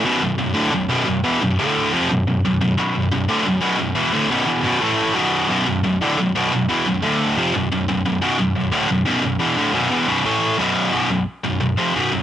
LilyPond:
\new Staff \with { instrumentName = "Distorted electric guitar" } { \clef bass \time 4/4 \key b \phrygian \tempo 4 = 176 <b,, fis, b,>8 <b,, fis,>8 <b,, fis,>8 <d, a, d>8 <b,, fis,>8 <b,, fis, b,>8 <b,, fis,>8 <e, b, e>8 | <b,, fis,>8 <d, a, d>4 <eis, c eis>8 <b,, fis,>8 <b,, fis,>8 <b,, fis,>8 <b,, fis,>8 | <b,, fis, b,>8 <b,, fis,>8 <b,, fis,>8 <d, a, d>8 <b,, fis,>8 <b,, fis, b,>8 <b,, fis,>8 <e, b, e>8 | <d, a, d>8 <b,, fis, b,>8 <e, b, e>8 <b,, fis, b,>8 <a, e a>4 <b,, fis, b,>4 |
<b,, fis, b,>8 <b,, fis,>8 <b,, fis,>8 <d, a, d>8 <b,, fis,>8 <b,, fis, b,>8 <b,, fis,>8 <e, b, e>8 | <b,, fis,>8 <d, a, d>4 <eis, c eis>8 <b,, fis,>8 <b,, fis,>8 <b,, fis,>8 <b,, fis,>8 | <b,, fis, b,>8 <b,, fis,>8 <b,, fis,>8 <d, a, d>8 <b,, fis,>8 <b,, fis, b,>8 <b,, fis,>8 <e, b, e>8 | <d, a, d>8 <b,, fis, b,>8 <e, b, e>8 <b,, fis, b,>8 <a, e a>4 <b,, fis, b,>4 |
<b,, fis, b,>8 <b,, fis,>8 r8 <b,, fis,>8 <b,, fis,>8 <eis, c eis>8 <b,, fis, b,>8 <b,, fis,>8 | }